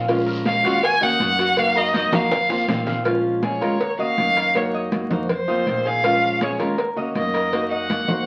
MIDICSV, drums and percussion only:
0, 0, Header, 1, 2, 480
1, 0, Start_track
1, 0, Key_signature, -5, "minor"
1, 0, Tempo, 371978
1, 114, Time_signature, 4, 2, 24, 8
1, 10661, End_track
2, 0, Start_track
2, 0, Title_t, "Drums"
2, 112, Note_on_c, 9, 56, 105
2, 114, Note_on_c, 9, 63, 37
2, 118, Note_on_c, 9, 74, 77
2, 241, Note_off_c, 9, 56, 0
2, 243, Note_off_c, 9, 63, 0
2, 247, Note_off_c, 9, 74, 0
2, 351, Note_on_c, 9, 63, 37
2, 480, Note_off_c, 9, 63, 0
2, 586, Note_on_c, 9, 63, 107
2, 588, Note_on_c, 9, 73, 77
2, 596, Note_on_c, 9, 56, 70
2, 715, Note_off_c, 9, 63, 0
2, 717, Note_off_c, 9, 73, 0
2, 725, Note_off_c, 9, 56, 0
2, 828, Note_on_c, 9, 63, 36
2, 832, Note_on_c, 9, 73, 77
2, 836, Note_on_c, 9, 56, 66
2, 957, Note_off_c, 9, 63, 0
2, 961, Note_off_c, 9, 73, 0
2, 965, Note_off_c, 9, 56, 0
2, 1065, Note_on_c, 9, 74, 81
2, 1071, Note_on_c, 9, 63, 37
2, 1075, Note_on_c, 9, 56, 117
2, 1194, Note_off_c, 9, 74, 0
2, 1200, Note_off_c, 9, 63, 0
2, 1204, Note_off_c, 9, 56, 0
2, 1313, Note_on_c, 9, 63, 37
2, 1443, Note_off_c, 9, 63, 0
2, 1545, Note_on_c, 9, 63, 88
2, 1550, Note_on_c, 9, 73, 72
2, 1553, Note_on_c, 9, 56, 71
2, 1674, Note_off_c, 9, 63, 0
2, 1679, Note_off_c, 9, 73, 0
2, 1682, Note_off_c, 9, 56, 0
2, 1789, Note_on_c, 9, 73, 75
2, 1794, Note_on_c, 9, 56, 74
2, 1918, Note_off_c, 9, 73, 0
2, 1923, Note_off_c, 9, 56, 0
2, 2025, Note_on_c, 9, 56, 104
2, 2028, Note_on_c, 9, 63, 38
2, 2033, Note_on_c, 9, 74, 78
2, 2154, Note_off_c, 9, 56, 0
2, 2157, Note_off_c, 9, 63, 0
2, 2162, Note_off_c, 9, 74, 0
2, 2269, Note_on_c, 9, 63, 37
2, 2398, Note_off_c, 9, 63, 0
2, 2504, Note_on_c, 9, 63, 106
2, 2510, Note_on_c, 9, 73, 80
2, 2513, Note_on_c, 9, 56, 70
2, 2633, Note_off_c, 9, 63, 0
2, 2639, Note_off_c, 9, 73, 0
2, 2642, Note_off_c, 9, 56, 0
2, 2740, Note_on_c, 9, 63, 98
2, 2740, Note_on_c, 9, 64, 89
2, 2749, Note_on_c, 9, 60, 98
2, 2755, Note_on_c, 9, 73, 72
2, 2869, Note_off_c, 9, 63, 0
2, 2869, Note_off_c, 9, 64, 0
2, 2878, Note_off_c, 9, 60, 0
2, 2884, Note_off_c, 9, 73, 0
2, 2981, Note_on_c, 9, 63, 36
2, 2987, Note_on_c, 9, 56, 117
2, 2987, Note_on_c, 9, 60, 117
2, 2991, Note_on_c, 9, 74, 74
2, 3110, Note_off_c, 9, 63, 0
2, 3116, Note_off_c, 9, 56, 0
2, 3116, Note_off_c, 9, 60, 0
2, 3120, Note_off_c, 9, 74, 0
2, 3220, Note_on_c, 9, 63, 38
2, 3224, Note_on_c, 9, 60, 73
2, 3349, Note_off_c, 9, 63, 0
2, 3353, Note_off_c, 9, 60, 0
2, 3460, Note_on_c, 9, 63, 82
2, 3465, Note_on_c, 9, 56, 69
2, 3465, Note_on_c, 9, 61, 96
2, 3471, Note_on_c, 9, 73, 73
2, 3589, Note_off_c, 9, 63, 0
2, 3594, Note_off_c, 9, 56, 0
2, 3594, Note_off_c, 9, 61, 0
2, 3600, Note_off_c, 9, 73, 0
2, 3699, Note_on_c, 9, 61, 81
2, 3705, Note_on_c, 9, 73, 76
2, 3828, Note_off_c, 9, 61, 0
2, 3834, Note_off_c, 9, 73, 0
2, 3939, Note_on_c, 9, 63, 37
2, 3941, Note_on_c, 9, 56, 109
2, 4068, Note_off_c, 9, 63, 0
2, 4070, Note_off_c, 9, 56, 0
2, 4184, Note_on_c, 9, 63, 34
2, 4313, Note_off_c, 9, 63, 0
2, 4420, Note_on_c, 9, 63, 98
2, 4426, Note_on_c, 9, 56, 68
2, 4549, Note_off_c, 9, 63, 0
2, 4555, Note_off_c, 9, 56, 0
2, 4665, Note_on_c, 9, 63, 34
2, 4673, Note_on_c, 9, 56, 66
2, 4794, Note_off_c, 9, 63, 0
2, 4802, Note_off_c, 9, 56, 0
2, 4908, Note_on_c, 9, 63, 36
2, 4910, Note_on_c, 9, 56, 109
2, 5037, Note_off_c, 9, 63, 0
2, 5039, Note_off_c, 9, 56, 0
2, 5152, Note_on_c, 9, 63, 38
2, 5281, Note_off_c, 9, 63, 0
2, 5389, Note_on_c, 9, 63, 79
2, 5395, Note_on_c, 9, 56, 67
2, 5519, Note_off_c, 9, 63, 0
2, 5524, Note_off_c, 9, 56, 0
2, 5632, Note_on_c, 9, 63, 36
2, 5637, Note_on_c, 9, 56, 73
2, 5761, Note_off_c, 9, 63, 0
2, 5766, Note_off_c, 9, 56, 0
2, 5875, Note_on_c, 9, 56, 97
2, 5875, Note_on_c, 9, 63, 36
2, 6004, Note_off_c, 9, 56, 0
2, 6004, Note_off_c, 9, 63, 0
2, 6114, Note_on_c, 9, 63, 34
2, 6243, Note_off_c, 9, 63, 0
2, 6348, Note_on_c, 9, 63, 100
2, 6353, Note_on_c, 9, 56, 68
2, 6477, Note_off_c, 9, 63, 0
2, 6482, Note_off_c, 9, 56, 0
2, 6590, Note_on_c, 9, 63, 93
2, 6590, Note_on_c, 9, 64, 84
2, 6719, Note_off_c, 9, 63, 0
2, 6719, Note_off_c, 9, 64, 0
2, 6831, Note_on_c, 9, 63, 35
2, 6831, Note_on_c, 9, 64, 70
2, 6832, Note_on_c, 9, 56, 112
2, 6960, Note_off_c, 9, 63, 0
2, 6960, Note_off_c, 9, 64, 0
2, 6961, Note_off_c, 9, 56, 0
2, 7073, Note_on_c, 9, 63, 35
2, 7202, Note_off_c, 9, 63, 0
2, 7308, Note_on_c, 9, 63, 80
2, 7317, Note_on_c, 9, 56, 71
2, 7437, Note_off_c, 9, 63, 0
2, 7446, Note_off_c, 9, 56, 0
2, 7793, Note_on_c, 9, 63, 38
2, 7794, Note_on_c, 9, 56, 105
2, 7922, Note_off_c, 9, 63, 0
2, 7923, Note_off_c, 9, 56, 0
2, 8034, Note_on_c, 9, 63, 36
2, 8163, Note_off_c, 9, 63, 0
2, 8272, Note_on_c, 9, 63, 98
2, 8273, Note_on_c, 9, 56, 69
2, 8401, Note_off_c, 9, 63, 0
2, 8402, Note_off_c, 9, 56, 0
2, 8515, Note_on_c, 9, 56, 67
2, 8644, Note_off_c, 9, 56, 0
2, 8752, Note_on_c, 9, 63, 37
2, 8754, Note_on_c, 9, 56, 106
2, 8881, Note_off_c, 9, 63, 0
2, 8883, Note_off_c, 9, 56, 0
2, 8990, Note_on_c, 9, 63, 36
2, 9119, Note_off_c, 9, 63, 0
2, 9229, Note_on_c, 9, 63, 80
2, 9233, Note_on_c, 9, 56, 65
2, 9358, Note_off_c, 9, 63, 0
2, 9362, Note_off_c, 9, 56, 0
2, 9472, Note_on_c, 9, 63, 38
2, 9479, Note_on_c, 9, 56, 70
2, 9601, Note_off_c, 9, 63, 0
2, 9608, Note_off_c, 9, 56, 0
2, 9715, Note_on_c, 9, 63, 37
2, 9716, Note_on_c, 9, 56, 110
2, 9844, Note_off_c, 9, 63, 0
2, 9845, Note_off_c, 9, 56, 0
2, 9954, Note_on_c, 9, 63, 34
2, 10083, Note_off_c, 9, 63, 0
2, 10192, Note_on_c, 9, 63, 102
2, 10200, Note_on_c, 9, 56, 70
2, 10321, Note_off_c, 9, 63, 0
2, 10329, Note_off_c, 9, 56, 0
2, 10430, Note_on_c, 9, 63, 96
2, 10430, Note_on_c, 9, 64, 81
2, 10559, Note_off_c, 9, 63, 0
2, 10559, Note_off_c, 9, 64, 0
2, 10661, End_track
0, 0, End_of_file